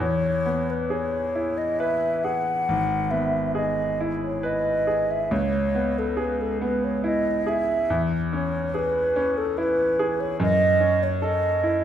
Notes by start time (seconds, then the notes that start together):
0.00 E2 C#5
0.46 B3
0.70 B4
0.90 G#4 C#5
1.35 E4
1.58 D#5
1.79 B4 E5
2.24 G#4 F#5
2.69 G#1
3.11 B3 E5
3.55 G#4 D#5
4.00 E4
4.23 C#5
4.43 B4 D#5
4.87 G#4
5.11 E5
5.31 C#2 C#5
5.75 B3
5.98 A4
6.17 G#4 B4
6.41 A4
6.61 B3 B4
6.84 C#5
7.04 E4 D#5
7.46 G#4 E5
7.90 E2
8.32 C#4 C#5
8.74 G#4 B4
9.16 C#4
9.38 A4
9.57 E4 B4
9.99 G#4
10.20 C#5
10.40 F#2 D#5
10.80 C#4
11.03 C#5
11.22 A4 D#5
11.64 E4